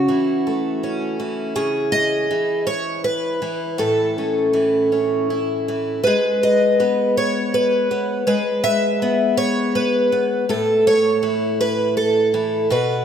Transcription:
Already playing: F#4
0.08 E3
0.47 A3
0.83 C#4
1.20 E3
1.56 C#3 G#4
1.92 D#5
2.31 E3
2.67 C#5
3.04 B4
3.42 E3
3.78 A2 A4
4.18 C#4
4.53 E3
4.92 C#4
5.30 E4
5.68 E3
6.04 G#3 B4
6.43 D#5
6.80 B3
7.17 C#5
7.54 B4
7.91 B3
8.27 G#3 B4
8.64 E5
9.02 B3
9.37 C#5
9.75 B4
10.12 B3
10.49 A2 A4
10.87 C#5
11.23 E3
11.61 B4
11.97 A4
12.34 E3
12.70 B2 B4

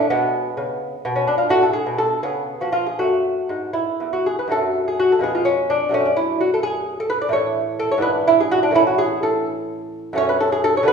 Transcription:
0.10 B2 G#3 B3
0.57 C#3
1.05 B2
1.16 C#4
1.27 D4
1.38 F4
1.49 A2 A3 F#4
1.63 A4
1.73 G#4
1.86 B2
1.98 A4
2.23 C#3 B3 G#4
2.61 F3 F#4
2.72 F4
2.87 G#4
2.99 F#2 A3 F#4
3.49 G#2
3.73 E4
4.00 E2
4.13 F#4
4.26 G#4
4.39 B4
4.48 F#2 F#3 A3
4.52 A4
4.88 G#4
5.00 F#4
5.12 A4
5.19 F2 G#3 B3
5.23 G#4
5.35 F4
5.45 C#4
5.70 D4
5.89 F#2 F#3 A3
5.94 C#4
6.05 D4
6.17 E4
6.41 F#4
6.54 A4
6.63 G#4
7.00 A4
7.10 B4
7.21 D5
7.29 A2 E3 A3
7.33 C#5
7.79 A4
7.91 C#5
7.98 G#2 E3 D4
8.02 B4
8.28 E4
8.40 G#4
8.52 F#4
8.63 D4
8.71 A2 E3 C#4
8.76 E4
8.87 F#4
8.98 G#4
9.23 A4
10.13 F#2 A3 C#4
10.18 C#5
10.29 B4
10.40 A4
10.52 G#4
10.64 A4
10.77 C#5
10.83 D3 A3 B3
10.88 B4

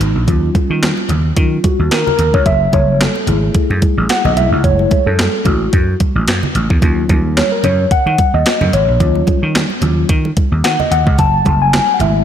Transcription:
Already playing: D#4
0.00 G#1, closed hi-hat
0.16 A#1
0.27 D#2 F#3 C#4 F4, kick, closed hi-hat, low conga
0.55 kick, closed hi-hat, high conga
0.70 D#3
0.83 snare, clap, closed hi-hat, high conga
0.97 muted conga
1.09 D#2, closed hi-hat, low conga
1.36 D#3 F#3 C#4 F4, kick, closed hi-hat, muted conga
1.64 F#4, kick, closed hi-hat, high conga
1.79 D#2
1.91 D#3 A#4, snare, clap, closed hi-hat
2.07 A#4, muted conga, low conga
2.19 D#2, closed hi-hat
2.34 C#2 C#5, kick
2.46 F#1 E5, kick, closed hi-hat, muted conga, low conga
2.73 F#1 C#5, kick, closed hi-hat, high conga
3.01 A4, snare, clap, closed hi-hat, high conga
3.16 muted conga
3.27 G#1 A3 E4 G#4, closed hi-hat, low conga
3.55 kick, closed hi-hat, muted conga
3.70 F#2, muted conga
3.82 kick, closed hi-hat, high conga
3.97 A1
4.09 F#5, snare, clap, closed hi-hat
4.25 A#1 D#5, muted conga, low conga
4.36 B1 G#3 A3 E4 E5, closed hi-hat
4.52 C#2
4.64 F#1 G#3 A3 E4 C#5, kick, closed hi-hat, low conga
4.79 muted conga
4.91 kick, closed hi-hat, high conga
5.06 F#2 A4
5.19 snare, clap, closed hi-hat, muted conga, high conga
5.45 A1 G#3 A3 E4 F#4, kick, closed hi-hat, low conga
5.73 F#2, kick, closed hi-hat
6.00 kick, closed hi-hat, high conga
6.15 A1
6.28 F#2, snare, clap, closed hi-hat
6.43 low conga
6.55 A1, closed hi-hat
6.70 E2, kick
6.82 D#2 F#3 C#4 F4, kick, closed hi-hat, muted conga, low conga
7.09 D#2, kick, closed hi-hat, high conga
7.37 C#5, snare, clap, closed hi-hat, muted conga, high conga
7.52 A#4
7.63 F#2 C#5, closed hi-hat, low conga
7.91 F#5, muted slap bass stroke, kick, closed hi-hat, muted conga
8.06 D#3, muted conga
8.18 kick, closed hi-hat, high conga
8.34 D#2 D#5
8.46 snare, clap, closed hi-hat, muted conga
8.61 F#2, muted conga, low conga
8.73 G#1 C#5, closed hi-hat
8.88 A#1
9.00 D#2 F#3 C#4 F4, kick, closed hi-hat, low conga
9.15 muted conga
9.27 kick, closed hi-hat, high conga
9.43 D#3
9.55 snare, clap, closed hi-hat, muted conga, high conga
9.70 muted conga
9.81 D#2 F#3 C#4 F4, closed hi-hat, low conga
10.09 D#3, kick, closed hi-hat
10.25 muted conga
10.37 kick, closed hi-hat, high conga
10.52 D#2
10.64 D#3 F#5, snare, clap, closed hi-hat
10.80 D#5, muted conga, low conga
10.91 D#2 F#5, closed hi-hat
11.07 C#2, kick
11.18 F#1 A5, kick, closed hi-hat, muted conga, low conga
11.45 F#1, kick, closed hi-hat, high conga
11.62 G#5
11.73 snare, clap, closed hi-hat, muted conga, high conga
11.88 muted conga
11.94 F#5
12.00 G#1 G#3 A3 E4 E5, closed hi-hat, low conga

